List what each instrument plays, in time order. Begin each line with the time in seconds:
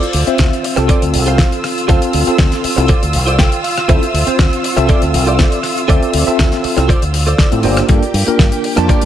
Already playing: clean electric guitar F4 A4 C5 D5, string section F4 E6
0.03 closed hi-hat
0.13 fingered electric bass D2, open hi-hat
0.27 tine electric piano C4 F4 C5 E5, closed hi-hat
0.38 fingered electric bass D2, kick, snare, closed hi-hat
0.53 closed hi-hat
0.63 muted clean electric guitar stroke, open hi-hat
0.76 fingered electric bass C2, tine electric piano C4 F4 A4, muted clean electric guitar stroke, cross-stick, closed hi-hat
0.88 clean electric guitar F4 A4 C5 D5, kick, closed hi-hat
1.02 fingered electric bass D2, closed hi-hat
1.13 fingered electric bass C2, muted clean electric guitar stroke, open hi-hat
1.26 clean electric guitar F4 A4 C5 F5, closed hi-hat
1.38 kick, snare, closed hi-hat
1.52 closed hi-hat
1.64 cross-stick, open hi-hat
1.78 closed hi-hat
1.88 fingered electric bass D2, tine electric piano C4 F4 A4, clean electric guitar F4 A4 C5 F5, kick, closed hi-hat
2.02 closed hi-hat
2.13 fingered electric bass D2, open hi-hat
2.27 tine electric piano C4 F4 A4, muted fingered electric bass stroke, closed hi-hat
2.38 fingered electric bass D2, kick, snare, closed hi-hat
2.52 snare, closed hi-hat
2.63 muted clean electric guitar stroke, muted fingered electric bass stroke, open hi-hat
2.76 fingered electric bass C2, tine electric piano C4 E4 F4 A4, muted clean electric guitar stroke, cross-stick, closed hi-hat
2.88 clean electric guitar F4 A4 C5 D5, kick, closed hi-hat
3.03 fingered electric bass D2, closed hi-hat
3.13 fingered electric bass C2, muted clean electric guitar stroke, open hi-hat
3.26 clean electric guitar F4 A4 C5 D5, closed hi-hat
3.39 clean electric guitar G5, kick, snare, closed hi-hat
3.52 closed hi-hat
3.64 clean electric guitar F5, open hi-hat
3.78 cross-stick, closed hi-hat
3.88 fingered electric bass D2, tine electric piano C4 E4 F4 A4, clean electric guitar F4 A4 C5 E5, kick, closed hi-hat
4.03 closed hi-hat
4.14 fingered electric bass D2, open hi-hat
4.27 tine electric piano C4 F4 C5, muted fingered electric bass stroke, closed hi-hat
4.39 fingered electric bass D2, kick, snare, closed hi-hat
4.53 closed hi-hat
4.63 muted clean electric guitar stroke, open hi-hat
4.76 fingered electric bass C2, tine electric piano C4 F4 A4 E5, muted clean electric guitar stroke, cross-stick, closed hi-hat
4.88 clean electric guitar F4 A4 C5 D5, muted fingered electric bass stroke, kick, closed hi-hat
5.02 fingered electric bass D2, closed hi-hat
5.13 fingered electric bass C2, muted clean electric guitar stroke, open hi-hat
5.26 clean electric guitar F4 A4 C5 D5, closed hi-hat
5.39 kick, snare, closed hi-hat
5.52 closed hi-hat
5.63 cross-stick, open hi-hat
5.77 closed hi-hat
5.88 fingered electric bass D2, tine electric piano C4 F4 A4 E5, clean electric guitar F4 A4 C5 D5, kick, closed hi-hat
6.03 closed hi-hat
6.14 fingered electric bass D2, open hi-hat
6.27 tine electric piano C4 F4 A4 E5, muted fingered electric bass stroke, closed hi-hat
6.39 fingered electric bass D2, kick, snare, closed hi-hat
6.52 snare, closed hi-hat
6.63 muted clean electric guitar stroke, muted fingered electric bass stroke, open hi-hat
6.77 fingered electric bass C2, tine electric piano C4 E4 F4 A4, muted clean electric guitar stroke, cross-stick, closed hi-hat
6.88 clean electric guitar F4 A4 C5 D5, kick, closed hi-hat
7.02 fingered electric bass D2, closed hi-hat
7.13 muted clean electric guitar stroke, open hi-hat
7.26 clean electric guitar F4 A4 C5 D5, closed hi-hat
7.38 kick, snare, closed hi-hat
7.52 fingered electric bass A2, tine electric piano C4 E4 F4 A4, closed hi-hat
7.63 fingered electric bass G1, tine electric piano A#3 D4 F4 C5, clean electric guitar F4 G4 A#4 D5, open hi-hat
7.77 cross-stick, closed hi-hat
7.88 fingered electric bass G2, tine electric piano A#3 D4 F4 A4, string section G4 G5, kick, closed hi-hat
8.03 closed hi-hat
8.14 fingered electric bass G2, open hi-hat
8.27 tine electric piano A#3 D4 F4 A#4, muted fingered electric bass stroke, closed hi-hat
8.39 fingered electric bass G2, kick, snare, closed hi-hat
8.52 closed hi-hat
8.63 muted clean electric guitar stroke, open hi-hat
8.76 fingered electric bass F2, tine electric piano A#3 D4 F4 A5, muted clean electric guitar stroke, cross-stick, closed hi-hat
8.88 clean electric guitar F4 G4 A#4 D5, muted fingered electric bass stroke, kick, closed hi-hat
9.02 closed hi-hat